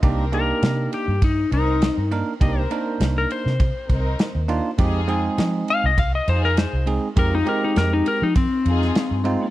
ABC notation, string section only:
X:1
M:4/4
L:1/16
Q:1/4=101
K:Cm
V:1 name="String section"
[CB]4 z6 [CEB]3 z3 | [CB]4 z6 [CEB]3 z3 | [EFA]4 z6 [EFA]3 z3 | [EF]4 z6 [EFA]3 z3 |]